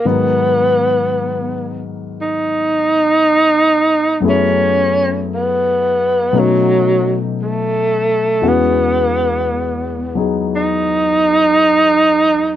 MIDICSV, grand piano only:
0, 0, Header, 1, 2, 480
1, 0, Start_track
1, 0, Key_signature, 5, "minor"
1, 0, Tempo, 1047120
1, 19, Time_signature, 4, 2, 24, 8
1, 5759, End_track
2, 0, Start_track
2, 0, Title_t, "Grand piano"
2, 0, Program_c, 0, 0
2, 0, Control_c, 0, 64, 127
2, 23, Note_on_c, 0, 44, 38
2, 24, Note_on_c, 0, 51, 34
2, 25, Control_c, 0, 64, 0
2, 26, Note_on_c, 0, 54, 33
2, 27, Note_on_c, 0, 70, 36
2, 29, Note_on_c, 0, 59, 42
2, 113, Control_c, 0, 64, 127
2, 1926, Note_off_c, 0, 54, 0
2, 1927, Note_on_c, 0, 42, 39
2, 1933, Note_on_c, 0, 54, 37
2, 1934, Note_off_c, 0, 59, 0
2, 1936, Note_on_c, 0, 57, 37
2, 1941, Note_on_c, 0, 59, 37
2, 1943, Note_off_c, 0, 44, 0
2, 1944, Note_off_c, 0, 51, 0
2, 1945, Note_off_c, 0, 70, 0
2, 1948, Control_c, 0, 64, 0
2, 1948, Note_on_c, 0, 64, 38
2, 1951, Note_on_c, 0, 68, 43
2, 2035, Control_c, 0, 64, 127
2, 2894, Note_off_c, 0, 42, 0
2, 2895, Note_off_c, 0, 54, 0
2, 2895, Note_off_c, 0, 57, 0
2, 2901, Note_off_c, 0, 59, 0
2, 2901, Note_on_c, 0, 47, 39
2, 2901, Note_on_c, 0, 54, 35
2, 2902, Note_on_c, 0, 57, 35
2, 2905, Note_off_c, 0, 64, 0
2, 2905, Note_on_c, 0, 61, 31
2, 2905, Note_on_c, 0, 63, 44
2, 2906, Note_off_c, 0, 68, 0
2, 2908, Control_c, 0, 64, 0
2, 2991, Control_c, 0, 64, 127
2, 3857, Note_off_c, 0, 61, 0
2, 3858, Note_on_c, 0, 40, 37
2, 3858, Note_on_c, 0, 52, 35
2, 3861, Note_off_c, 0, 47, 0
2, 3861, Note_off_c, 0, 54, 0
2, 3861, Note_off_c, 0, 57, 0
2, 3861, Note_on_c, 0, 56, 35
2, 3863, Note_off_c, 0, 63, 0
2, 3863, Note_on_c, 0, 61, 32
2, 3866, Note_on_c, 0, 66, 43
2, 3868, Control_c, 0, 64, 0
2, 3937, Control_c, 0, 64, 127
2, 4654, Note_on_c, 0, 54, 35
2, 4660, Note_on_c, 0, 59, 31
2, 4663, Note_on_c, 0, 63, 33
2, 4667, Note_on_c, 0, 68, 39
2, 5759, Note_off_c, 0, 40, 0
2, 5759, Note_off_c, 0, 52, 0
2, 5759, Note_off_c, 0, 54, 0
2, 5759, Note_off_c, 0, 56, 0
2, 5759, Note_off_c, 0, 59, 0
2, 5759, Note_off_c, 0, 61, 0
2, 5759, Note_off_c, 0, 63, 0
2, 5759, Note_off_c, 0, 66, 0
2, 5759, Note_off_c, 0, 68, 0
2, 5759, End_track
0, 0, End_of_file